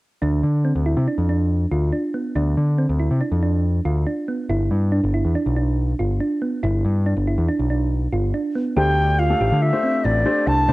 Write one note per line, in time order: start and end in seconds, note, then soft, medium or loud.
0.22 0.41 D2 medium
0.22 0.57 D4 medium
0.43 0.71 D3 medium
0.65 0.82 C4 medium
0.75 0.94 D2 medium
0.86 1.04 E4 medium
0.97 1.06 C3 medium
1.08 1.25 D4 medium
1.18 1.65 F2 medium
1.29 1.64 D4 medium
1.71 1.90 D2 medium
1.71 1.89 F4 medium
1.93 2.10 D4 medium
2.14 2.32 B3 medium
2.36 2.55 D2 medium
2.36 2.71 D4 medium
2.57 2.85 D3 medium
2.78 2.96 C4 medium
2.89 3.08 D2 medium
3.00 3.17 E4 medium
3.11 3.20 C3 medium
3.21 3.39 D4 medium
3.32 3.79 F2 medium
3.43 3.78 D4 medium
3.85 4.04 D2 medium
3.85 4.03 F4 medium
4.07 4.24 D4 medium
4.28 4.46 B3 medium
4.49 4.68 G1 medium
4.49 4.85 E4 medium
4.71 4.99 G2 medium
4.92 5.10 D4 medium
5.04 5.22 G1 medium
5.14 5.32 E4 medium
5.25 5.34 E2 medium
5.35 5.53 D4 medium
5.46 5.93 B1 medium
5.57 5.92 D4 medium
5.99 6.18 G1 medium
5.99 6.17 F4 medium
6.20 6.38 D4 medium
6.42 6.60 B3 medium
6.63 6.82 G1 medium
6.63 6.98 E4 medium
6.85 7.13 G2 medium
7.06 7.24 D4 medium
7.17 7.35 G1 medium
7.27 7.45 E4 medium
7.38 7.47 E2 medium
7.49 7.66 D4 medium
7.59 8.06 B1 medium
7.70 8.05 D4 medium
8.12 8.31 G1 medium
8.12 8.30 F4 medium
8.34 8.52 D4 medium
8.55 8.73 B3 medium
8.77 9.33 D2 medium
8.77 9.25 A3 medium
8.77 9.25 D4 medium
8.77 9.12 G4 medium
8.77 9.25 G4 medium
8.77 9.25 C5 medium
8.77 9.21 G5 medium
9.19 9.37 F4 medium
9.19 9.63 F5 medium
9.30 9.69 A3 medium
9.30 9.69 D4 medium
9.30 9.69 G4 medium
9.30 9.69 A4 medium
9.41 9.50 A1 medium
9.41 9.58 G4 medium
9.52 9.70 D3 medium
9.62 9.80 F4 medium
9.62 10.06 E5 medium
9.73 10.21 A3 medium
9.73 10.21 D4 medium
9.73 10.21 G4 medium
9.73 10.21 C5 medium
9.83 10.18 C4 medium
10.04 10.23 A1 medium
10.04 10.49 D5 medium
10.26 10.64 A3 medium
10.26 10.64 D4 medium
10.26 10.43 D4 medium
10.26 10.64 G4 medium
10.26 10.64 C5 medium
10.47 10.66 C2 medium
10.47 10.65 D4 medium
10.47 10.73 A5 medium
10.68 10.73 C3 medium
10.68 10.73 A3 medium
10.68 10.73 D4 medium
10.68 10.73 G4 medium
10.68 10.73 C5 medium